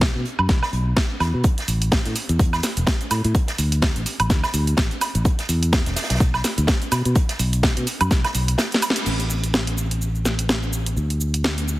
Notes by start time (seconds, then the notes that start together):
Already playing: B1
0.01 kick, snare, closed hi-hat
0.15 B2
0.25 closed hi-hat
0.39 F#2, high woodblock
0.49 B1, kick, snare, closed hi-hat
0.62 snare, high woodblock
0.73 B1, closed hi-hat
0.97 kick, snare, closed hi-hat
1.20 E2, snare, closed hi-hat, high woodblock
1.34 B2
1.44 kick, closed hi-hat, cabasa
1.58 snare, closed hi-hat, cabasa
1.68 A1, closed hi-hat, open hi-hat, cabasa
1.82 closed hi-hat, cabasa
1.92 kick, snare, closed hi-hat, cabasa
2.05 A2, snare, closed hi-hat, cabasa
2.15 closed hi-hat, open hi-hat, cabasa
2.29 E2, closed hi-hat, cabasa
2.39 kick, closed hi-hat, cabasa
2.53 snare, cabasa, high woodblock
2.63 snare, closed hi-hat, open hi-hat, cabasa
2.77 E1, closed hi-hat, cabasa
2.87 kick, snare, closed hi-hat, cabasa
3.01 closed hi-hat, cabasa
3.11 A2, snare, closed hi-hat, open hi-hat, cabasa, high woodblock
3.24 A2, closed hi-hat, cabasa
3.35 kick, closed hi-hat, cabasa
3.48 snare, closed hi-hat, cabasa
3.58 D2, closed hi-hat, open hi-hat, cabasa
3.72 closed hi-hat, cabasa
3.82 kick, snare, closed hi-hat, cabasa
3.96 A1, closed hi-hat, cabasa
4.06 closed hi-hat, open hi-hat, cabasa
4.20 A1, closed hi-hat, cabasa, high woodblock
4.30 D2, kick, snare, closed hi-hat, cabasa
4.43 snare, cabasa, high woodblock
4.54 D2, closed hi-hat, open hi-hat, cabasa
4.67 closed hi-hat, cabasa
4.77 kick, snare, closed hi-hat, cabasa
4.91 closed hi-hat, cabasa
5.01 snare, closed hi-hat, open hi-hat, cabasa, high woodblock
5.15 A1, closed hi-hat, cabasa
5.25 kick, closed hi-hat, cabasa
5.39 snare, closed hi-hat, cabasa
5.49 E2, closed hi-hat, open hi-hat, cabasa
5.63 closed hi-hat, cabasa
5.73 kick, snare, closed hi-hat, cabasa
5.86 E1, snare, closed hi-hat, cabasa
5.96 snare, closed hi-hat, open hi-hat, cabasa
6.03 snare, closed hi-hat
6.10 B1, snare, closed hi-hat, cabasa
6.15 snare, closed hi-hat
6.20 kick, closed hi-hat, cabasa
6.34 snare, cabasa, high woodblock
6.44 snare, closed hi-hat, open hi-hat, cabasa
6.58 D2, closed hi-hat, cabasa
6.67 kick, snare, closed hi-hat, cabasa
6.82 closed hi-hat, cabasa
6.91 B2, snare, closed hi-hat, open hi-hat, cabasa, high woodblock
7.05 B2, closed hi-hat, cabasa
7.15 kick, closed hi-hat, cabasa
7.29 snare, closed hi-hat, cabasa
7.39 B1, closed hi-hat, open hi-hat, cabasa
7.53 closed hi-hat, cabasa
7.63 kick, snare, closed hi-hat, cabasa
7.77 B2, closed hi-hat, cabasa
7.87 closed hi-hat, open hi-hat, cabasa
8.01 F#2, closed hi-hat, cabasa, high woodblock
8.11 B1, kick, snare, closed hi-hat, cabasa
8.24 snare, closed hi-hat, cabasa, high woodblock
8.35 B1, closed hi-hat, open hi-hat, cabasa
8.48 closed hi-hat, cabasa
8.58 snare, closed hi-hat, cabasa
8.72 snare, closed hi-hat, cabasa
8.82 snare, closed hi-hat, open hi-hat, cabasa, high woodblock
8.90 snare
8.96 closed hi-hat, cabasa
9.06 A1, crash, cabasa
9.20 closed hi-hat, cabasa
9.30 cabasa
9.44 closed hi-hat, cabasa
9.54 snare, cabasa
9.67 closed hi-hat, cabasa
9.78 cabasa
9.91 closed hi-hat, cabasa
10.02 cabasa
10.15 cabasa
10.25 snare, cabasa
10.39 closed hi-hat, cabasa
10.49 snare, cabasa
10.63 cabasa
10.73 cabasa
10.86 closed hi-hat, cabasa
10.97 D2, cabasa
11.10 closed hi-hat, cabasa
11.21 cabasa
11.34 closed hi-hat, cabasa
11.44 snare, cabasa
11.58 closed hi-hat, cabasa
11.68 cabasa